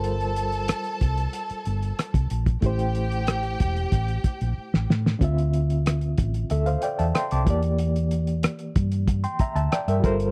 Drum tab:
HH |xxxxxxxxxxxxxxxx|xxxxxxxxxxxx----|xxxxxxxxxxxxxxxx|xxxxxxxxxxxxxxxx|
SD |----r-------r---|----r--------ooo|----r-------r---|----r-------r---|
BD |------o------o-o|o-----o-o-o-----|o-----o-------o-|------o-o-o---o-|